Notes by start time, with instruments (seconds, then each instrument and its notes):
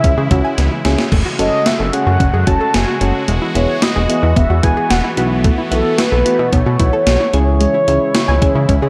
Already playing: analog synth pad C#3 E3 G#3 E4, soft synth lead E5
0.04 analog synth bass C#2, synth arpeggio sound C#4, kick, closed hi-hat
0.17 analog synth bass C#3, synth arpeggio sound G#4
0.31 analog synth bass C#2, synth keys C#4 E4 F#4, synth arpeggio sound E4, kick, closed hi-hat
0.44 synth arpeggio sound G#5
0.58 analog synth bass C#2, snare, closed hi-hat
0.71 synth arpeggio sound E4
0.85 analog synth bass C#2, synth keys C#4 E4 G#4, snare, closed hi-hat
0.98 snare
1.12 analog synth bass F#1, analog synth pad C#3 G#3 A3 F#4, synth arpeggio sound A3, kick, crash
1.25 synth arpeggio sound F#4
1.39 analog synth bass F#1, synth keys C#4 F#4 A4, soft synth lead D#5, closed hi-hat
1.66 synth arpeggio sound F#4, soft synth lead E5, snare, closed hi-hat
1.79 analog synth bass F#1, synth arpeggio sound A4
1.93 synth keys C#4 F#4 G#4, soft synth lead F#5, closed hi-hat
2.06 analog synth bass F#2, synth arpeggio sound F#4
2.20 analog synth bass F#1, synth arpeggio sound C#4, kick, closed hi-hat
2.34 analog synth bass F#2, synth arpeggio sound G#4
2.47 analog synth bass F#1, synth keys C#4 F#4 A4, synth arpeggio sound F#4, soft synth lead A5, kick, closed hi-hat
2.61 synth arpeggio sound A4
2.74 analog synth bass F#1, soft synth lead G#5, snare, closed hi-hat
2.88 synth arpeggio sound F#4
3.01 analog synth bass F#1, synth keys C#4 F#4 A4, closed hi-hat
3.28 analog synth bass E1, analog synth pad E3 B3, synth arpeggio sound G#3, closed hi-hat
3.42 synth arpeggio sound E4
3.55 analog synth bass E1, synth keys B3 E4 G#4, soft synth lead C#5, closed hi-hat
3.82 synth arpeggio sound E4, soft synth lead D#5, snare, closed hi-hat
3.96 analog synth bass E1, synth arpeggio sound G#4
4.09 synth keys B3 E4 G#4, closed hi-hat
4.23 analog synth bass E2, synth arpeggio sound E4
4.36 analog synth bass E1, synth arpeggio sound B3, soft synth lead E5, kick, closed hi-hat
4.50 analog synth bass E2, synth arpeggio sound F#4
4.63 analog synth bass E1, synth keys B3 E4 G#4, synth arpeggio sound E4, soft synth lead G#5, kick, closed hi-hat
4.77 synth arpeggio sound G#4
4.90 analog synth bass E1, soft synth lead F#5, snare, closed hi-hat
5.04 synth arpeggio sound E4
5.17 analog synth bass B1, analog synth pad A3, synth keys B3 E4 F#4, closed hi-hat
5.44 synth arpeggio sound A3, kick, closed hi-hat
5.58 synth arpeggio sound E4
5.71 analog synth bass B1, synth keys B3 E4 F#4, soft synth lead A4, closed hi-hat
5.98 synth arpeggio sound E4, soft synth lead B4, snare, closed hi-hat
6.12 analog synth bass B1, synth arpeggio sound A4
6.25 synth keys B3 E4 F#4, closed hi-hat
6.39 analog synth bass B2, synth arpeggio sound E4
6.52 analog synth bass B1, synth arpeggio sound B3, soft synth lead C#5, kick, closed hi-hat
6.66 analog synth bass B2, synth arpeggio sound F#4
6.79 analog synth bass B1, synth keys B3 E4 F#4, synth arpeggio sound E4, kick, closed hi-hat
6.93 synth arpeggio sound A4
7.07 analog synth bass B1, snare, closed hi-hat
7.20 synth arpeggio sound E4
7.33 analog synth bass C#2, analog synth pad C#3 E3 G#3 E4, synth keys C#4 E4 G#4, closed hi-hat
7.61 synth arpeggio sound G#3, soft synth lead C#5, closed hi-hat
7.74 synth arpeggio sound E4
7.88 analog synth bass C#2, synth keys C#4 E4 G#4, closed hi-hat
8.15 synth arpeggio sound E4, snare, closed hi-hat
8.28 analog synth bass C#2, synth arpeggio sound G#5
8.42 synth keys C#4 E4 G#4, kick, closed hi-hat
8.55 analog synth bass C#3, synth arpeggio sound E4
8.69 analog synth bass C#2, synth arpeggio sound C#4, kick, closed hi-hat
8.82 analog synth bass C#3, synth arpeggio sound G#4